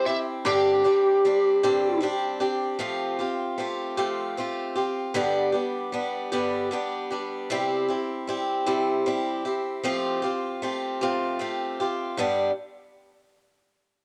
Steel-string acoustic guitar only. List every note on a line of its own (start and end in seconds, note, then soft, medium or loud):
0.06 0.45 C4 soft
0.06 0.46 E4 soft
0.06 0.46 G4 medium
0.45 0.85 G2 medium
0.45 0.85 D3 medium
0.45 0.85 G3 medium
0.45 0.84 C4 loud
0.45 0.84 D4 medium
0.45 0.83 G4 medium
0.84 1.24 G3 soft
0.84 1.24 C4 soft
0.84 1.25 D4 medium
0.84 1.24 G4 medium
1.25 1.63 G3 medium
1.25 1.63 C4 medium
1.25 1.62 D4 medium
1.25 1.62 G4 medium
1.63 2.04 G2 medium
1.63 2.03 D3 medium
1.63 1.99 G3 medium
1.63 2.01 C4 medium
1.63 2.02 D4 medium
1.63 2.02 G4 medium
2.01 2.40 G3 medium
2.01 2.40 C4 medium
2.01 2.39 D4 medium
2.01 2.39 G4 medium
2.40 2.79 G3 soft
2.40 2.79 C4 medium
2.40 2.79 D4 medium
2.40 2.79 G4 medium
2.79 3.19 F3 medium
2.79 3.19 A3 medium
2.79 3.20 C4 medium
2.79 3.19 F4 medium
2.79 3.18 G4 medium
3.19 3.57 C4 soft
3.19 3.58 F4 medium
3.19 3.59 G4 medium
3.58 3.97 A3 medium
3.58 3.97 C4 medium
3.58 3.97 F4 medium
3.58 3.96 G4 medium
3.97 4.38 F3 medium
3.97 4.36 A3 medium
3.97 4.37 C4 medium
3.97 4.37 F4 medium
3.97 4.37 G4 medium
4.37 4.77 A3 medium
4.37 4.76 C4 medium
4.37 4.75 F4 medium
4.37 4.74 G4 medium
4.75 5.14 C4 soft
4.75 5.16 F4 medium
4.75 5.15 G4 medium
5.14 5.54 G2 medium
5.14 5.54 D3 medium
5.14 5.54 G3 medium
5.14 5.53 B3 medium
5.14 5.52 D4 loud
5.14 5.51 G4 medium
5.52 5.91 G3 soft
5.52 5.92 B3 soft
5.52 5.92 D4 soft
5.52 5.93 G4 medium
5.92 6.32 G3 medium
5.92 6.32 B3 medium
5.92 6.31 D4 medium
5.92 6.31 G4 medium
6.32 6.72 G2 medium
6.32 6.72 D3 medium
6.32 6.70 G3 medium
6.32 6.71 B3 medium
6.32 6.72 D4 medium
6.32 6.71 G4 medium
6.71 7.11 G3 medium
6.71 7.11 B3 medium
6.71 7.10 D4 medium
6.71 7.09 G4 medium
7.10 7.49 G3 medium
7.10 7.51 B3 medium
7.10 7.50 D4 medium
7.10 7.50 G4 medium
7.50 7.89 C3 medium
7.50 7.89 G3 medium
7.50 7.89 C4 medium
7.50 7.88 E4 loud
7.50 7.87 G4 medium
7.88 8.27 C4 soft
7.88 8.27 E4 medium
7.88 8.28 G4 medium
8.27 8.67 G3 medium
8.27 8.66 C4 medium
8.27 8.66 E4 medium
8.27 8.65 G4 medium
8.66 9.06 C3 medium
8.66 9.05 G3 medium
8.66 9.05 C4 medium
8.66 9.06 E4 medium
8.66 9.06 G4 medium
9.06 9.45 G3 medium
9.06 9.45 C4 medium
9.06 9.45 E4 medium
9.06 9.44 G4 medium
9.45 9.83 C4 soft
9.45 9.85 E4 medium
9.45 9.84 G4 medium
9.84 10.23 F3 medium
9.84 10.23 A3 medium
9.84 10.23 C4 medium
9.84 10.22 F4 loud
9.84 10.21 G4 medium
10.22 10.62 C4 soft
10.22 10.62 F4 medium
10.22 10.62 G4 medium
10.62 11.01 A3 medium
10.62 11.01 C4 medium
10.62 11.01 F4 medium
10.62 11.00 G4 medium
11.01 11.41 F3 medium
11.01 11.38 A3 medium
11.01 11.39 C4 medium
11.01 11.40 F4 medium
11.01 11.40 G4 medium
11.39 11.79 A3 medium
11.39 11.80 C4 medium
11.39 11.80 F4 medium
11.39 11.79 G4 medium
11.80 12.19 C4 medium
11.80 12.19 F4 soft
11.80 12.19 G4 medium
12.17 12.49 G2 medium
12.17 12.50 D3 medium
12.17 12.50 G3 medium
12.17 12.50 B3 medium
12.17 12.50 D4 medium
12.17 12.50 G4 medium